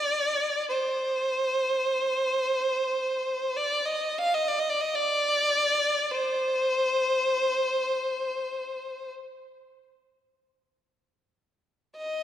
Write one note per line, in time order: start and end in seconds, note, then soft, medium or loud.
0.00 0.64 D5 medium
0.69 3.58 C5 medium
3.57 3.87 D5 medium
3.86 4.20 D#5 medium
4.19 4.36 F5 medium
4.34 4.50 D#5 medium
4.48 4.61 D5 medium
4.59 4.72 D#5 medium
4.70 4.83 D5 medium
4.81 4.97 D#5 medium
4.95 6.13 D5 medium
6.12 9.11 C5 medium
11.97 12.23 D#5 medium